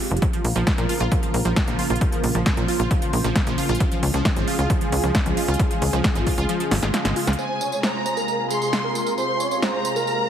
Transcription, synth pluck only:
0, 0, Header, 1, 2, 480
1, 0, Start_track
1, 0, Key_signature, -4, "minor"
1, 0, Tempo, 447761
1, 237, Time_signature, 4, 2, 24, 8
1, 11034, End_track
2, 0, Start_track
2, 0, Title_t, "Synth pluck"
2, 0, Program_c, 0, 84
2, 237, Note_on_c, 0, 53, 81
2, 282, Note_off_c, 0, 53, 0
2, 357, Note_on_c, 0, 53, 76
2, 402, Note_off_c, 0, 53, 0
2, 596, Note_on_c, 0, 53, 99
2, 664, Note_off_c, 0, 53, 0
2, 836, Note_on_c, 0, 53, 103
2, 904, Note_off_c, 0, 53, 0
2, 956, Note_on_c, 0, 65, 76
2, 1023, Note_off_c, 0, 65, 0
2, 1076, Note_on_c, 0, 65, 96
2, 1144, Note_off_c, 0, 65, 0
2, 1196, Note_on_c, 0, 53, 83
2, 1241, Note_off_c, 0, 53, 0
2, 1316, Note_on_c, 0, 53, 74
2, 1361, Note_off_c, 0, 53, 0
2, 1556, Note_on_c, 0, 53, 100
2, 1624, Note_off_c, 0, 53, 0
2, 1796, Note_on_c, 0, 53, 100
2, 1864, Note_off_c, 0, 53, 0
2, 1916, Note_on_c, 0, 65, 74
2, 1984, Note_off_c, 0, 65, 0
2, 2036, Note_on_c, 0, 65, 103
2, 2104, Note_off_c, 0, 65, 0
2, 2156, Note_on_c, 0, 53, 81
2, 2201, Note_off_c, 0, 53, 0
2, 2276, Note_on_c, 0, 53, 79
2, 2321, Note_off_c, 0, 53, 0
2, 2517, Note_on_c, 0, 53, 96
2, 2584, Note_off_c, 0, 53, 0
2, 2757, Note_on_c, 0, 53, 100
2, 2824, Note_off_c, 0, 53, 0
2, 2877, Note_on_c, 0, 65, 76
2, 2944, Note_off_c, 0, 65, 0
2, 2997, Note_on_c, 0, 65, 95
2, 3064, Note_off_c, 0, 65, 0
2, 3117, Note_on_c, 0, 53, 85
2, 3162, Note_off_c, 0, 53, 0
2, 3238, Note_on_c, 0, 53, 72
2, 3282, Note_off_c, 0, 53, 0
2, 3478, Note_on_c, 0, 53, 103
2, 3544, Note_off_c, 0, 53, 0
2, 3718, Note_on_c, 0, 53, 101
2, 3784, Note_off_c, 0, 53, 0
2, 3838, Note_on_c, 0, 65, 74
2, 3904, Note_off_c, 0, 65, 0
2, 3958, Note_on_c, 0, 65, 100
2, 4024, Note_off_c, 0, 65, 0
2, 4078, Note_on_c, 0, 53, 85
2, 4122, Note_off_c, 0, 53, 0
2, 4198, Note_on_c, 0, 53, 78
2, 4242, Note_off_c, 0, 53, 0
2, 4437, Note_on_c, 0, 53, 102
2, 4504, Note_off_c, 0, 53, 0
2, 4677, Note_on_c, 0, 53, 102
2, 4744, Note_off_c, 0, 53, 0
2, 4798, Note_on_c, 0, 65, 77
2, 4864, Note_off_c, 0, 65, 0
2, 4918, Note_on_c, 0, 65, 100
2, 4984, Note_off_c, 0, 65, 0
2, 5038, Note_on_c, 0, 53, 85
2, 5082, Note_off_c, 0, 53, 0
2, 5158, Note_on_c, 0, 53, 75
2, 5202, Note_off_c, 0, 53, 0
2, 5398, Note_on_c, 0, 53, 103
2, 5465, Note_off_c, 0, 53, 0
2, 5638, Note_on_c, 0, 53, 98
2, 5704, Note_off_c, 0, 53, 0
2, 5758, Note_on_c, 0, 65, 75
2, 5825, Note_off_c, 0, 65, 0
2, 5878, Note_on_c, 0, 65, 102
2, 5944, Note_off_c, 0, 65, 0
2, 5998, Note_on_c, 0, 53, 85
2, 6042, Note_off_c, 0, 53, 0
2, 6118, Note_on_c, 0, 53, 78
2, 6162, Note_off_c, 0, 53, 0
2, 6358, Note_on_c, 0, 53, 101
2, 6424, Note_off_c, 0, 53, 0
2, 6598, Note_on_c, 0, 53, 101
2, 6664, Note_off_c, 0, 53, 0
2, 6718, Note_on_c, 0, 65, 78
2, 6785, Note_off_c, 0, 65, 0
2, 6838, Note_on_c, 0, 65, 96
2, 6904, Note_off_c, 0, 65, 0
2, 6957, Note_on_c, 0, 53, 86
2, 7002, Note_off_c, 0, 53, 0
2, 7078, Note_on_c, 0, 53, 75
2, 7122, Note_off_c, 0, 53, 0
2, 7317, Note_on_c, 0, 65, 79
2, 7362, Note_off_c, 0, 65, 0
2, 7437, Note_on_c, 0, 53, 82
2, 7482, Note_off_c, 0, 53, 0
2, 7558, Note_on_c, 0, 56, 99
2, 7602, Note_off_c, 0, 56, 0
2, 7677, Note_on_c, 0, 65, 74
2, 7704, Note_off_c, 0, 65, 0
2, 7797, Note_on_c, 0, 65, 75
2, 7824, Note_off_c, 0, 65, 0
2, 11034, End_track
0, 0, End_of_file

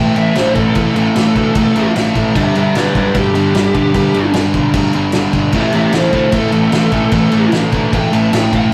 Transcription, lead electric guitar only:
0, 0, Header, 1, 2, 480
1, 0, Start_track
1, 0, Tempo, 398406
1, 916, Time_signature, 4, 2, 24, 8
1, 10525, End_track
2, 0, Start_track
2, 0, Title_t, "Lead electric guitar"
2, 0, Program_c, 0, 29
2, 0, Note_on_c, 0, 79, 90
2, 197, Note_off_c, 0, 79, 0
2, 213, Note_on_c, 0, 76, 91
2, 437, Note_off_c, 0, 76, 0
2, 440, Note_on_c, 0, 72, 101
2, 665, Note_off_c, 0, 72, 0
2, 669, Note_on_c, 0, 69, 85
2, 888, Note_off_c, 0, 69, 0
2, 903, Note_on_c, 0, 69, 101
2, 2306, Note_off_c, 0, 69, 0
2, 2839, Note_on_c, 0, 67, 83
2, 2846, Note_on_c, 0, 76, 95
2, 3073, Note_off_c, 0, 76, 0
2, 3078, Note_off_c, 0, 67, 0
2, 3105, Note_on_c, 0, 67, 70
2, 3108, Note_on_c, 0, 76, 75
2, 3316, Note_off_c, 0, 67, 0
2, 3323, Note_off_c, 0, 76, 0
2, 3327, Note_on_c, 0, 71, 83
2, 3338, Note_on_c, 0, 74, 75
2, 3547, Note_off_c, 0, 71, 0
2, 3559, Note_off_c, 0, 74, 0
2, 3585, Note_on_c, 0, 71, 77
2, 3591, Note_on_c, 0, 74, 86
2, 3795, Note_off_c, 0, 71, 0
2, 3807, Note_off_c, 0, 74, 0
2, 3827, Note_on_c, 0, 67, 111
2, 5210, Note_off_c, 0, 67, 0
2, 6698, Note_on_c, 0, 67, 86
2, 6704, Note_on_c, 0, 76, 105
2, 6911, Note_off_c, 0, 67, 0
2, 6914, Note_off_c, 0, 76, 0
2, 6924, Note_on_c, 0, 67, 72
2, 6931, Note_on_c, 0, 76, 74
2, 7145, Note_off_c, 0, 67, 0
2, 7156, Note_off_c, 0, 76, 0
2, 7164, Note_on_c, 0, 64, 77
2, 7179, Note_on_c, 0, 72, 92
2, 7381, Note_off_c, 0, 64, 0
2, 7393, Note_off_c, 0, 72, 0
2, 7395, Note_on_c, 0, 64, 88
2, 7407, Note_on_c, 0, 72, 101
2, 7620, Note_off_c, 0, 64, 0
2, 7635, Note_off_c, 0, 72, 0
2, 7650, Note_on_c, 0, 69, 119
2, 9040, Note_off_c, 0, 69, 0
2, 9573, Note_on_c, 0, 79, 110
2, 9798, Note_off_c, 0, 79, 0
2, 9814, Note_on_c, 0, 81, 92
2, 10041, Note_off_c, 0, 81, 0
2, 10041, Note_on_c, 0, 79, 98
2, 10272, Note_off_c, 0, 79, 0
2, 10304, Note_on_c, 0, 79, 104
2, 10523, Note_off_c, 0, 79, 0
2, 10525, End_track
0, 0, End_of_file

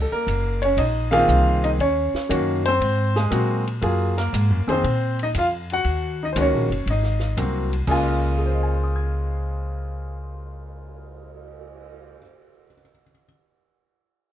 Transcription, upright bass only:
0, 0, Header, 1, 3, 480
1, 0, Start_track
1, 0, Key_signature, -5, "major"
1, 0, Tempo, 508044
1, 1687, Time_signature, 4, 2, 24, 8
1, 13532, End_track
2, 0, Start_track
2, 0, Title_t, "Upright bass"
2, 0, Program_c, 0, 32
2, 253, Note_on_c, 0, 30, 78
2, 716, Note_off_c, 0, 30, 0
2, 726, Note_on_c, 0, 34, 77
2, 1192, Note_off_c, 0, 34, 0
2, 1211, Note_on_c, 0, 36, 80
2, 1674, Note_off_c, 0, 36, 0
2, 1690, Note_on_c, 0, 39, 74
2, 1996, Note_off_c, 0, 39, 0
2, 2175, Note_on_c, 0, 42, 84
2, 2636, Note_off_c, 0, 42, 0
2, 2650, Note_on_c, 0, 44, 77
2, 3112, Note_off_c, 0, 44, 0
2, 3127, Note_on_c, 0, 46, 79
2, 3591, Note_off_c, 0, 46, 0
2, 3608, Note_on_c, 0, 42, 77
2, 4071, Note_off_c, 0, 42, 0
2, 4091, Note_on_c, 0, 44, 80
2, 4255, Note_off_c, 0, 44, 0
2, 4255, Note_on_c, 0, 42, 48
2, 4406, Note_off_c, 0, 42, 0
2, 4412, Note_on_c, 0, 41, 58
2, 4557, Note_off_c, 0, 41, 0
2, 4571, Note_on_c, 0, 46, 74
2, 5033, Note_off_c, 0, 46, 0
2, 5051, Note_on_c, 0, 41, 73
2, 5513, Note_off_c, 0, 41, 0
2, 5525, Note_on_c, 0, 39, 71
2, 5990, Note_off_c, 0, 39, 0
2, 6005, Note_on_c, 0, 37, 81
2, 6176, Note_off_c, 0, 37, 0
2, 6176, Note_on_c, 0, 34, 46
2, 6320, Note_off_c, 0, 34, 0
2, 6326, Note_on_c, 0, 30, 55
2, 6473, Note_off_c, 0, 30, 0
2, 6482, Note_on_c, 0, 32, 72
2, 6948, Note_off_c, 0, 32, 0
2, 6964, Note_on_c, 0, 36, 78
2, 7430, Note_off_c, 0, 36, 0
2, 7438, Note_on_c, 0, 37, 73
2, 11470, Note_off_c, 0, 37, 0
2, 13532, End_track
3, 0, Start_track
3, 0, Title_t, "Muted upright bass strokes"
3, 109, Note_on_c, 9, 29, 35
3, 204, Note_off_c, 9, 29, 0
3, 2020, Note_on_c, 9, 29, 34
3, 2114, Note_off_c, 9, 29, 0
3, 13532, End_track
0, 0, End_of_file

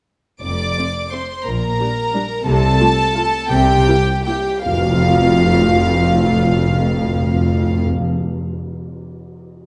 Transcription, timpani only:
0, 0, Header, 1, 2, 480
1, 0, Start_track
1, 0, Key_signature, -1, "major"
1, 0, Tempo, 335383
1, 621, Time_signature, 3, 2, 24, 8
1, 3994, Tempo, 355450
1, 4954, Tempo, 366972
1, 5434, Tempo, 397614
1, 9274, Tempo, 371287
1, 12649, End_track
2, 0, Start_track
2, 0, Title_t, "Timpani"
2, 0, Program_c, 0, 47
2, 4956, Note_on_c, 0, 48, 81
2, 5627, Note_off_c, 0, 48, 0
2, 6390, Note_on_c, 0, 41, 76
2, 6474, Note_off_c, 0, 41, 0
2, 6476, Note_on_c, 0, 41, 75
2, 6555, Note_off_c, 0, 41, 0
2, 6555, Note_on_c, 0, 41, 70
2, 6638, Note_off_c, 0, 41, 0
2, 6638, Note_on_c, 0, 41, 72
2, 6714, Note_off_c, 0, 41, 0
2, 6714, Note_on_c, 0, 41, 79
2, 6794, Note_off_c, 0, 41, 0
2, 6794, Note_on_c, 0, 41, 72
2, 6875, Note_off_c, 0, 41, 0
2, 6875, Note_on_c, 0, 41, 81
2, 6958, Note_off_c, 0, 41, 0
2, 6964, Note_on_c, 0, 41, 72
2, 7048, Note_off_c, 0, 41, 0
2, 7050, Note_on_c, 0, 41, 70
2, 7134, Note_off_c, 0, 41, 0
2, 7136, Note_on_c, 0, 41, 74
2, 7218, Note_off_c, 0, 41, 0
2, 7218, Note_on_c, 0, 41, 80
2, 7301, Note_off_c, 0, 41, 0
2, 7301, Note_on_c, 0, 41, 69
2, 7382, Note_off_c, 0, 41, 0
2, 7382, Note_on_c, 0, 41, 76
2, 7465, Note_off_c, 0, 41, 0
2, 7470, Note_on_c, 0, 41, 74
2, 7554, Note_off_c, 0, 41, 0
2, 7555, Note_on_c, 0, 41, 73
2, 7630, Note_off_c, 0, 41, 0
2, 7630, Note_on_c, 0, 41, 73
2, 7714, Note_off_c, 0, 41, 0
2, 7715, Note_on_c, 0, 41, 79
2, 7798, Note_off_c, 0, 41, 0
2, 7798, Note_on_c, 0, 41, 65
2, 7875, Note_off_c, 0, 41, 0
2, 7875, Note_on_c, 0, 41, 75
2, 7958, Note_off_c, 0, 41, 0
2, 7961, Note_on_c, 0, 41, 72
2, 8045, Note_off_c, 0, 41, 0
2, 8048, Note_on_c, 0, 41, 73
2, 8131, Note_off_c, 0, 41, 0
2, 8131, Note_on_c, 0, 41, 72
2, 8213, Note_off_c, 0, 41, 0
2, 8213, Note_on_c, 0, 41, 75
2, 8297, Note_off_c, 0, 41, 0
2, 8300, Note_on_c, 0, 41, 66
2, 8384, Note_off_c, 0, 41, 0
2, 8392, Note_on_c, 0, 41, 79
2, 8471, Note_off_c, 0, 41, 0
2, 8471, Note_on_c, 0, 41, 73
2, 8549, Note_off_c, 0, 41, 0
2, 8549, Note_on_c, 0, 41, 78
2, 8632, Note_off_c, 0, 41, 0
2, 8632, Note_on_c, 0, 41, 70
2, 8712, Note_off_c, 0, 41, 0
2, 8712, Note_on_c, 0, 41, 69
2, 8795, Note_off_c, 0, 41, 0
2, 8795, Note_on_c, 0, 41, 71
2, 8879, Note_off_c, 0, 41, 0
2, 8885, Note_on_c, 0, 41, 78
2, 8969, Note_off_c, 0, 41, 0
2, 8973, Note_on_c, 0, 41, 73
2, 9057, Note_off_c, 0, 41, 0
2, 9063, Note_on_c, 0, 41, 76
2, 9146, Note_off_c, 0, 41, 0
2, 9149, Note_on_c, 0, 41, 73
2, 9232, Note_off_c, 0, 41, 0
2, 9233, Note_on_c, 0, 41, 83
2, 9318, Note_off_c, 0, 41, 0
2, 9318, Note_on_c, 0, 41, 75
2, 9407, Note_off_c, 0, 41, 0
2, 9407, Note_on_c, 0, 41, 74
2, 9496, Note_off_c, 0, 41, 0
2, 9498, Note_on_c, 0, 41, 65
2, 9584, Note_off_c, 0, 41, 0
2, 9584, Note_on_c, 0, 41, 81
2, 9673, Note_off_c, 0, 41, 0
2, 9673, Note_on_c, 0, 41, 72
2, 9762, Note_off_c, 0, 41, 0
2, 9762, Note_on_c, 0, 41, 76
2, 9851, Note_off_c, 0, 41, 0
2, 9851, Note_on_c, 0, 41, 77
2, 9940, Note_off_c, 0, 41, 0
2, 9940, Note_on_c, 0, 41, 77
2, 10030, Note_off_c, 0, 41, 0
2, 10030, Note_on_c, 0, 41, 67
2, 10120, Note_off_c, 0, 41, 0
2, 10128, Note_on_c, 0, 41, 76
2, 10215, Note_off_c, 0, 41, 0
2, 10215, Note_on_c, 0, 41, 69
2, 10305, Note_off_c, 0, 41, 0
2, 10320, Note_on_c, 0, 41, 74
2, 10410, Note_off_c, 0, 41, 0
2, 10416, Note_on_c, 0, 41, 68
2, 10506, Note_off_c, 0, 41, 0
2, 10509, Note_on_c, 0, 41, 82
2, 10599, Note_off_c, 0, 41, 0
2, 12649, End_track
0, 0, End_of_file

